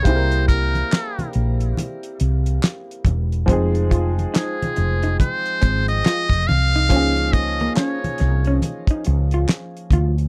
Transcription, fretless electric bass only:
X:1
M:4/4
L:1/16
Q:"Swing 16ths" 1/4=70
K:Dblyd
V:1 name="Fretless electric bass" clef=bass
C,,4 z2 B,,,2 z2 C,,2 z2 =E,,,2 | F,,,4 z2 F,,,2 z2 A,,,2 z F,,, C,,2 | D,,4 z2 C,,2 z2 D,,2 z2 =D,,2 |]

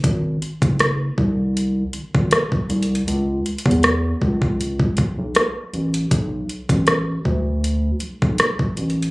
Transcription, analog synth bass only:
X:1
M:4/4
L:1/16
Q:"Swing 16ths" 1/4=79
K:Bdor
V:1 name="Analog synth bass" clef=bass
G,,,2 z F,,,3 ^B,,,4 G,,, G,,, z2 B,,,2 | C,,2 z E,,3 C,,4 B,,, B,,, z2 A,,,2 | B,,,2 z A,,,3 D,,4 B,,, B,,, z2 A,,,2 |]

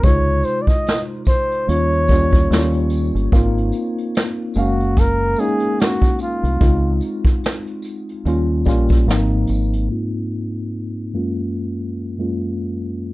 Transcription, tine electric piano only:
X:1
M:4/4
L:1/16
Q:"Swing 16ths" 1/4=73
K:Abmix
V:1 name="Tine electric piano"
[C,A,EF]6- [C,A,EF] z [=G,B,DF]2 [G,B,DF]2 [G,B,DF]4 | [B,CEF]6 [A,B,Df]4 [A,B,DE]4- [A,B,DE] z | [A,CEF]6- [A,CEF] z [=G,B,DF]2 [G,B,DF]2 [A,,F,B,CE]4 | [A,,B,CEF]4- [A,,B,CEF] z [G,,A,B,DF]4- [G,,A,B,DF] [G,,A,B,DF]4- [G,,A,B,DF] |]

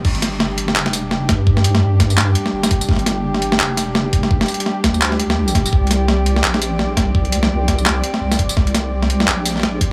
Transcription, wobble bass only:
X:1
M:4/4
L:1/8
Q:"Swing 16ths" 1/4=169
K:Gm
V:1 name="Wobble bass" clef=bass
G,,,4 F,,,3 G,,- | G,,4- G,, z G,,,2 | G,,,4 F,,,3 F,,,- | F,,, z2 D,,4- D,, |
C,,4 B,,,3 C,,- | C,,4- C,, z C,,2 | C,,4 B,,,3 B,,, |]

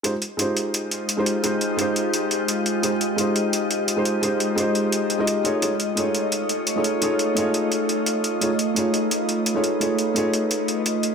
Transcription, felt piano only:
X:1
M:4/4
L:1/16
Q:"Swing 16ths" 1/4=172
K:Fm
V:1 name="Felt piano"
[A,EFGc] z3 [A,EFGc]8- [A,EFGc] [A,EFGc]3 | [A,EFGc]4 [A,EFGc]12 | [A,EFGc] z3 [A,EFGc]8- [A,EFGc] [A,EFGc]3 | [A,EFGc]4 [A,EFGc]6- [A,EFGc] [A,EFGe]3 [=A,EF^G^c]2 |
[=A,EF^G^c] z3 [A,EFGc]8- [A,EFGc] [A,EFGc]3 | [=A,EF^G^c]4 [A,EFGc]12 | [=A,EF^G^c] z3 [A,EFGc]8- [A,EFGc] [A,EFGc]3 | [=A,EF^G^c]4 [A,EFGc]12 |]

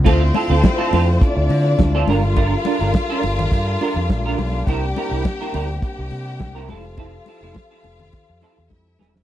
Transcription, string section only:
X:1
M:4/4
L:1/8
Q:1/4=104
K:Gdor
V:1 name="String section"
[Cc]4 [Dd]3 [Ff]- | [Ff]8 | [Gg]4 [Gg]3 [Ff]- | [Ff]6 [Ee]2 |]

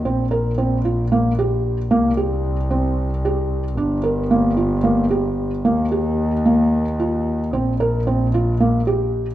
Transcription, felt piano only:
X:1
M:7/8
L:1/8
Q:1/4=112
K:Bbmix
V:1 name="Felt piano"
C B C F B, G2 | B, G2 C2 G2 | D B B, F B, G2 | B, G2 B,2 F2 |
C B C F B, G2 |]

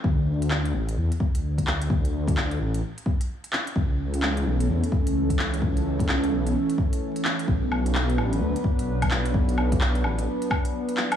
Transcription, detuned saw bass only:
X:1
M:4/4
L:1/16
Q:"Swing 16ths" 1/4=129
K:Bm
V:1 name="Detuned saw bass" clef=bass
D,,6 A,,,2 E,, z2 D,,4- D,, | D,,6 A,,,2 z8 | C,,6 B,,,2 E,, z2 C,,4- C,, | C,,6 B,,,2 z8 |
B,,,6 A,,,2 D,, z2 B,,,4- B,,, | B,,,6 A,,,2 z8 |]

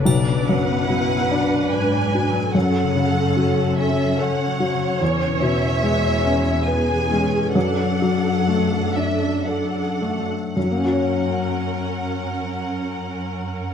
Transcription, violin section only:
X:1
M:3/4
L:1/8
Q:1/4=71
K:F#m
V:1 name="Violin section"
d f3 g2 | f3 e f2 | c e3 g2 | f3 e f2 |
f6 |]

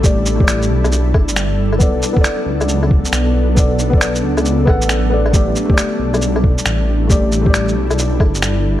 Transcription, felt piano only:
X:1
M:4/4
L:1/16
Q:"Swing 16ths" 1/4=136
K:Amix
V:1 name="Felt piano"
[A,Gd]3 [A,Gd]12- [A,Gd] | [B,Ad]3 [B,Ad]12- [B,Ad] | [B,Ad]3 [B,Ad]6- [B,Ad] [B,Af]4 [B,Ad] z | [A,Gd]3 [A,Gd]12- [A,Gd] |
[A,Gd]3 [A,Gd]12- [A,Gd] |]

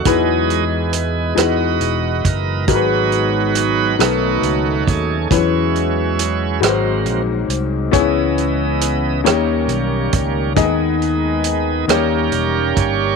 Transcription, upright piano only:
X:1
M:6/8
L:1/8
Q:3/8=46
K:G#m
V:1 name="Upright piano"
[G,DEB]2 z [G,DEB]2 z | [G,DFAB]2 z [=A,DFB]2 z | [F,G,CEB]2 z [G,DFB^B]2 z | [B,DEGc]2 z [A,D=Gc]2 z |
[A,B,DGd]2 z [A,D=Gc]2 z |]
V:2 name="Upright piano" clef=bass
E,3 z3 | G,,3 B,,3 | E,3 G,,3 | C,3 D,3 |
D,3 D,3 |]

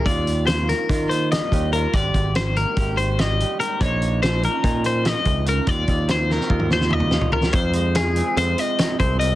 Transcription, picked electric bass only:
X:1
M:9/8
L:1/8
Q:3/8=96
K:Eb
V:1 name="Picked electric bass" clef=bass
E,,4 E,3 E,,2 | A,,, A,,,3 A,,,4 z | B,,,4 B,,3 _D,,2 | E,, E,,3 E,,4 z |
F,,4 F,, z2 C,,2 |]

